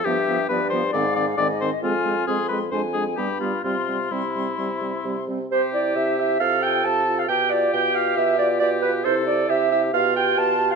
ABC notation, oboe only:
X:1
M:4/4
L:1/8
Q:1/4=135
K:C
V:1 name="Oboe"
G2 B c d d d c | F2 _A B c A G F | F2 E4- E z | G4 A4 |
G6 G2 | A2 G2 F4 |]